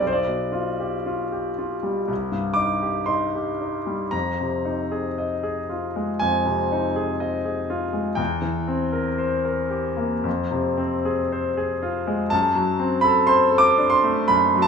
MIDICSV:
0, 0, Header, 1, 2, 480
1, 0, Start_track
1, 0, Tempo, 1030928
1, 9, Time_signature, 4, 2, 24, 8
1, 2889, Tempo, 996678
1, 4329, Tempo, 1065719
1, 5289, Tempo, 1001669
1, 6894, End_track
2, 0, Start_track
2, 0, Title_t, "Grand piano"
2, 0, Program_c, 0, 0
2, 0, Control_c, 0, 64, 127
2, 2, Note_on_c, 0, 35, 39
2, 16, Control_c, 0, 64, 0
2, 32, Note_on_c, 0, 72, 48
2, 59, Note_on_c, 0, 74, 53
2, 68, Note_off_c, 0, 72, 0
2, 95, Control_c, 0, 64, 127
2, 125, Note_on_c, 0, 47, 27
2, 243, Note_on_c, 0, 65, 31
2, 323, Note_off_c, 0, 47, 0
2, 373, Note_on_c, 0, 67, 32
2, 443, Note_off_c, 0, 65, 0
2, 494, Note_on_c, 0, 65, 34
2, 570, Note_off_c, 0, 67, 0
2, 616, Note_on_c, 0, 67, 32
2, 691, Note_off_c, 0, 65, 0
2, 737, Note_on_c, 0, 65, 29
2, 811, Note_off_c, 0, 67, 0
2, 852, Note_on_c, 0, 55, 31
2, 930, Note_off_c, 0, 65, 0
2, 957, Note_off_c, 0, 35, 0
2, 968, Note_on_c, 0, 36, 39
2, 975, Note_off_c, 0, 55, 0
2, 988, Control_c, 0, 64, 0
2, 1073, Control_c, 0, 64, 127
2, 1078, Note_on_c, 0, 43, 31
2, 1181, Note_on_c, 0, 86, 69
2, 1193, Note_on_c, 0, 63, 33
2, 1208, Note_off_c, 0, 74, 0
2, 1275, Note_off_c, 0, 43, 0
2, 1314, Note_on_c, 0, 67, 36
2, 1392, Note_off_c, 0, 63, 0
2, 1424, Note_on_c, 0, 84, 58
2, 1433, Note_off_c, 0, 86, 0
2, 1434, Note_on_c, 0, 63, 36
2, 1512, Note_off_c, 0, 67, 0
2, 1561, Note_on_c, 0, 67, 31
2, 1631, Note_off_c, 0, 63, 0
2, 1681, Note_on_c, 0, 63, 34
2, 1755, Note_off_c, 0, 67, 0
2, 1800, Note_on_c, 0, 55, 31
2, 1876, Note_off_c, 0, 63, 0
2, 1903, Note_off_c, 0, 36, 0
2, 1914, Note_on_c, 0, 82, 62
2, 1915, Note_off_c, 0, 84, 0
2, 1919, Note_on_c, 0, 41, 34
2, 1924, Note_off_c, 0, 55, 0
2, 1934, Control_c, 0, 64, 0
2, 2000, Control_c, 0, 64, 127
2, 2052, Note_on_c, 0, 48, 27
2, 2166, Note_on_c, 0, 63, 34
2, 2247, Note_off_c, 0, 48, 0
2, 2288, Note_on_c, 0, 68, 35
2, 2364, Note_off_c, 0, 63, 0
2, 2413, Note_on_c, 0, 75, 36
2, 2484, Note_off_c, 0, 68, 0
2, 2530, Note_on_c, 0, 68, 37
2, 2605, Note_off_c, 0, 75, 0
2, 2651, Note_on_c, 0, 65, 30
2, 2722, Note_off_c, 0, 68, 0
2, 2775, Note_on_c, 0, 56, 36
2, 2842, Note_off_c, 0, 65, 0
2, 2868, Note_off_c, 0, 41, 0
2, 2884, Note_off_c, 0, 82, 0
2, 2884, Note_on_c, 0, 80, 70
2, 2894, Note_on_c, 0, 41, 36
2, 2965, Note_off_c, 0, 56, 0
2, 3009, Note_on_c, 0, 48, 35
2, 3138, Note_on_c, 0, 63, 40
2, 3204, Note_off_c, 0, 48, 0
2, 3253, Note_on_c, 0, 68, 38
2, 3327, Note_off_c, 0, 63, 0
2, 3369, Note_on_c, 0, 75, 43
2, 3444, Note_off_c, 0, 68, 0
2, 3491, Note_on_c, 0, 68, 32
2, 3561, Note_off_c, 0, 75, 0
2, 3608, Note_on_c, 0, 65, 39
2, 3681, Note_off_c, 0, 68, 0
2, 3721, Note_on_c, 0, 56, 36
2, 3798, Note_off_c, 0, 65, 0
2, 3827, Note_on_c, 0, 79, 65
2, 3828, Note_off_c, 0, 41, 0
2, 3836, Note_on_c, 0, 40, 42
2, 3842, Note_off_c, 0, 56, 0
2, 3843, Note_off_c, 0, 80, 0
2, 3854, Control_c, 0, 64, 0
2, 3939, Control_c, 0, 64, 127
2, 3954, Note_on_c, 0, 52, 31
2, 4078, Note_on_c, 0, 60, 37
2, 4152, Note_off_c, 0, 52, 0
2, 4198, Note_on_c, 0, 70, 38
2, 4277, Note_off_c, 0, 60, 0
2, 4323, Note_on_c, 0, 72, 38
2, 4397, Note_off_c, 0, 70, 0
2, 4444, Note_on_c, 0, 70, 40
2, 4515, Note_off_c, 0, 72, 0
2, 4556, Note_on_c, 0, 67, 35
2, 4636, Note_off_c, 0, 70, 0
2, 4676, Note_on_c, 0, 58, 36
2, 4754, Note_off_c, 0, 67, 0
2, 4785, Note_off_c, 0, 40, 0
2, 4799, Note_on_c, 0, 41, 44
2, 4803, Note_off_c, 0, 58, 0
2, 4815, Control_c, 0, 64, 0
2, 4879, Control_c, 0, 64, 127
2, 4922, Note_on_c, 0, 48, 41
2, 5040, Note_on_c, 0, 60, 42
2, 5043, Note_off_c, 0, 79, 0
2, 5121, Note_off_c, 0, 48, 0
2, 5166, Note_on_c, 0, 68, 43
2, 5238, Note_off_c, 0, 60, 0
2, 5288, Note_on_c, 0, 72, 43
2, 5361, Note_off_c, 0, 68, 0
2, 5408, Note_on_c, 0, 68, 42
2, 5485, Note_off_c, 0, 72, 0
2, 5528, Note_on_c, 0, 65, 41
2, 5602, Note_off_c, 0, 68, 0
2, 5647, Note_on_c, 0, 56, 42
2, 5721, Note_off_c, 0, 65, 0
2, 5747, Note_off_c, 0, 41, 0
2, 5756, Note_on_c, 0, 81, 82
2, 5765, Note_on_c, 0, 42, 51
2, 5768, Note_off_c, 0, 56, 0
2, 5779, Control_c, 0, 64, 0
2, 5844, Control_c, 0, 64, 127
2, 5877, Note_on_c, 0, 54, 40
2, 5991, Note_on_c, 0, 60, 45
2, 6071, Note_off_c, 0, 54, 0
2, 6097, Note_on_c, 0, 83, 81
2, 6111, Note_on_c, 0, 69, 46
2, 6116, Note_off_c, 0, 81, 0
2, 6186, Note_off_c, 0, 60, 0
2, 6219, Note_on_c, 0, 84, 85
2, 6227, Note_off_c, 0, 83, 0
2, 6229, Note_on_c, 0, 72, 49
2, 6304, Note_off_c, 0, 69, 0
2, 6338, Note_on_c, 0, 69, 46
2, 6370, Note_on_c, 0, 86, 94
2, 6387, Note_off_c, 0, 84, 0
2, 6423, Note_off_c, 0, 72, 0
2, 6464, Note_on_c, 0, 62, 44
2, 6521, Note_on_c, 0, 84, 84
2, 6540, Note_off_c, 0, 69, 0
2, 6545, Note_off_c, 0, 86, 0
2, 6589, Note_on_c, 0, 57, 42
2, 6667, Note_off_c, 0, 62, 0
2, 6700, Note_off_c, 0, 42, 0
2, 6703, Note_on_c, 0, 83, 84
2, 6705, Note_off_c, 0, 84, 0
2, 6707, Note_on_c, 0, 42, 47
2, 6793, Note_off_c, 0, 57, 0
2, 6841, Note_on_c, 0, 54, 47
2, 6868, Note_on_c, 0, 81, 91
2, 6880, Note_off_c, 0, 83, 0
2, 6894, Note_off_c, 0, 42, 0
2, 6894, Note_off_c, 0, 54, 0
2, 6894, Note_off_c, 0, 81, 0
2, 6894, End_track
0, 0, End_of_file